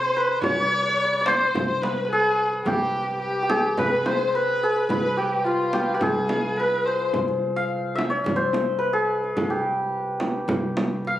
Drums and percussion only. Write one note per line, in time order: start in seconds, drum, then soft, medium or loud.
0.28 tombak ka soft
0.42 tombak dum medium
0.42 frame drum loud
1.26 tombak tek medium
1.26 frame drum medium
1.41 tombak ka soft
1.55 frame drum medium
1.55 tombak dum medium
1.83 tombak tek medium
1.83 frame drum medium
2.53 tombak ka soft
2.66 tombak dum medium
2.66 frame drum medium
3.50 tombak tek medium
3.50 frame drum medium
3.64 tombak ka soft
3.77 tombak dum medium
3.77 frame drum medium
4.06 tombak tek medium
4.06 frame drum medium
4.76 tombak ka soft
4.90 frame drum medium
4.90 tombak dum medium
5.45 tombak ka soft
5.73 tombak tek medium
5.73 frame drum medium
6.01 tombak dum medium
6.01 frame drum medium
6.29 tombak tek medium
6.29 frame drum medium
6.56 tombak ka soft
6.72 tombak ka soft
6.99 tombak ka soft
7.13 frame drum medium
7.13 tombak dum medium
7.28 tombak ka soft
7.98 tombak tek medium
7.98 frame drum medium
8.26 tombak dum medium
8.26 frame drum medium
8.53 tombak tek medium
8.53 frame drum medium
8.82 tombak ka soft
9.24 tombak ka soft
9.37 tombak dum medium
9.37 frame drum medium
9.51 tombak ka soft
10.20 tombak tek medium
10.20 frame drum medium
10.49 frame drum medium
10.49 tombak dum medium
10.77 tombak tek medium
10.77 frame drum medium
11.05 tombak ka soft